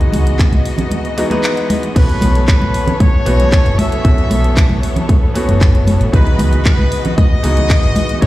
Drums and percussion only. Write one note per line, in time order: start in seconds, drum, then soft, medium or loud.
0.01 closed hi-hat soft
0.13 open hi-hat loud
0.13 high conga medium
0.27 closed hi-hat medium
0.39 kick loud
0.39 clap loud
0.39 closed hi-hat medium
0.53 closed hi-hat soft
0.53 high conga medium
0.65 open hi-hat medium
0.78 closed hi-hat medium
0.78 low conga medium
0.91 closed hi-hat medium
0.91 high conga medium
1.05 closed hi-hat soft
1.18 open hi-hat loud
1.31 closed hi-hat medium
1.31 high conga medium
1.44 clap loud
1.44 closed hi-hat medium
1.57 closed hi-hat soft
1.70 open hi-hat medium
1.70 high conga loud
1.83 closed hi-hat medium
1.96 kick loud
1.96 closed hi-hat medium
1.96 crash medium
2.09 closed hi-hat soft
2.21 open hi-hat loud
2.21 high conga loud
2.35 closed hi-hat soft
2.48 kick loud
2.48 clap loud
2.48 closed hi-hat medium
2.62 high conga medium
2.74 open hi-hat medium
2.87 closed hi-hat medium
2.87 low conga medium
3.00 kick loud
3.00 closed hi-hat medium
3.00 high conga medium
3.26 open hi-hat loud
3.40 closed hi-hat medium
3.40 high conga medium
3.52 kick loud
3.52 clap loud
3.52 closed hi-hat medium
3.66 closed hi-hat soft
3.79 open hi-hat loud
3.79 high conga medium
3.92 closed hi-hat medium
4.05 kick loud
4.05 closed hi-hat medium
4.18 closed hi-hat soft
4.31 open hi-hat loud
4.31 high conga medium
4.44 closed hi-hat soft
4.57 kick loud
4.57 clap loud
4.57 closed hi-hat medium
4.69 high conga medium
4.83 open hi-hat medium
4.96 closed hi-hat medium
4.96 low conga medium
5.09 kick loud
5.09 closed hi-hat medium
5.09 high conga loud
5.35 open hi-hat loud
5.49 closed hi-hat medium
5.49 high conga medium
5.61 kick loud
5.61 clap loud
5.61 closed hi-hat medium
5.75 closed hi-hat soft
5.87 open hi-hat loud
5.87 high conga medium
6.01 closed hi-hat medium
6.13 kick loud
6.13 closed hi-hat medium
6.26 closed hi-hat soft
6.39 open hi-hat loud
6.39 high conga medium
6.53 closed hi-hat soft
6.65 kick loud
6.65 clap loud
6.65 closed hi-hat medium
6.79 high conga medium
6.92 open hi-hat loud
7.05 closed hi-hat soft
7.05 low conga medium
7.18 kick loud
7.18 closed hi-hat medium
7.18 high conga loud
7.44 open hi-hat loud
7.57 closed hi-hat medium
7.57 high conga medium
7.70 kick loud
7.70 clap loud
7.70 closed hi-hat medium
7.83 closed hi-hat soft
7.96 open hi-hat loud
7.96 high conga medium
8.09 closed hi-hat medium
8.22 kick loud
8.22 closed hi-hat medium